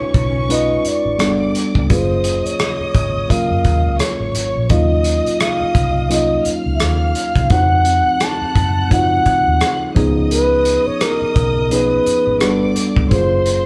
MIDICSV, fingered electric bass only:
0, 0, Header, 1, 3, 480
1, 0, Start_track
1, 0, Tempo, 700935
1, 1299, Time_signature, 4, 2, 24, 8
1, 9353, End_track
2, 0, Start_track
2, 0, Title_t, "Fingered electric bass"
2, 0, Program_c, 0, 33
2, 99, Note_on_c, 0, 35, 88
2, 524, Note_off_c, 0, 35, 0
2, 721, Note_on_c, 0, 32, 79
2, 819, Note_off_c, 0, 32, 0
2, 819, Note_on_c, 0, 31, 90
2, 1032, Note_off_c, 0, 31, 0
2, 1199, Note_on_c, 0, 37, 78
2, 1288, Note_off_c, 0, 37, 0
2, 1302, Note_on_c, 0, 30, 91
2, 1637, Note_off_c, 0, 30, 0
2, 2018, Note_on_c, 0, 32, 78
2, 2231, Note_off_c, 0, 32, 0
2, 2400, Note_on_c, 0, 42, 74
2, 2489, Note_off_c, 0, 42, 0
2, 2500, Note_on_c, 0, 39, 80
2, 2623, Note_off_c, 0, 39, 0
2, 2639, Note_on_c, 0, 37, 73
2, 2728, Note_off_c, 0, 37, 0
2, 2877, Note_on_c, 0, 32, 72
2, 2967, Note_off_c, 0, 32, 0
2, 2979, Note_on_c, 0, 32, 71
2, 3103, Note_off_c, 0, 32, 0
2, 3120, Note_on_c, 0, 34, 70
2, 3208, Note_off_c, 0, 34, 0
2, 3218, Note_on_c, 0, 39, 94
2, 3554, Note_off_c, 0, 39, 0
2, 3938, Note_on_c, 0, 36, 80
2, 4364, Note_off_c, 0, 36, 0
2, 4560, Note_on_c, 0, 37, 83
2, 4649, Note_off_c, 0, 37, 0
2, 4662, Note_on_c, 0, 39, 75
2, 4873, Note_off_c, 0, 39, 0
2, 5037, Note_on_c, 0, 36, 63
2, 5127, Note_off_c, 0, 36, 0
2, 5139, Note_on_c, 0, 41, 92
2, 5475, Note_off_c, 0, 41, 0
2, 5858, Note_on_c, 0, 42, 85
2, 6283, Note_off_c, 0, 42, 0
2, 6483, Note_on_c, 0, 39, 77
2, 6570, Note_off_c, 0, 39, 0
2, 6821, Note_on_c, 0, 37, 93
2, 7369, Note_off_c, 0, 37, 0
2, 7779, Note_on_c, 0, 35, 88
2, 8204, Note_off_c, 0, 35, 0
2, 8401, Note_on_c, 0, 32, 83
2, 8502, Note_off_c, 0, 32, 0
2, 8502, Note_on_c, 0, 31, 89
2, 8713, Note_off_c, 0, 31, 0
2, 8880, Note_on_c, 0, 37, 81
2, 8968, Note_off_c, 0, 37, 0
2, 8980, Note_on_c, 0, 30, 97
2, 9315, Note_off_c, 0, 30, 0
2, 9353, End_track
3, 0, Start_track
3, 0, Title_t, "Muted fingered electric bass strokes"
3, 6, Note_on_c, 9, 29, 40
3, 75, Note_off_c, 9, 29, 0
3, 583, Note_on_c, 9, 29, 39
3, 652, Note_off_c, 9, 29, 0
3, 1679, Note_on_c, 9, 29, 39
3, 1747, Note_off_c, 9, 29, 0
3, 1919, Note_on_c, 9, 29, 40
3, 1987, Note_off_c, 9, 29, 0
3, 3598, Note_on_c, 9, 29, 42
3, 3667, Note_off_c, 9, 29, 0
3, 3840, Note_on_c, 9, 29, 41
3, 3909, Note_off_c, 9, 29, 0
3, 4420, Note_on_c, 9, 29, 45
3, 4488, Note_off_c, 9, 29, 0
3, 5520, Note_on_c, 9, 29, 43
3, 5588, Note_off_c, 9, 29, 0
3, 5762, Note_on_c, 9, 29, 43
3, 5830, Note_off_c, 9, 29, 0
3, 6342, Note_on_c, 9, 29, 43
3, 6411, Note_off_c, 9, 29, 0
3, 7444, Note_on_c, 9, 29, 45
3, 7513, Note_off_c, 9, 29, 0
3, 7680, Note_on_c, 9, 29, 42
3, 7749, Note_off_c, 9, 29, 0
3, 8264, Note_on_c, 9, 29, 44
3, 8333, Note_off_c, 9, 29, 0
3, 9353, End_track
0, 0, End_of_file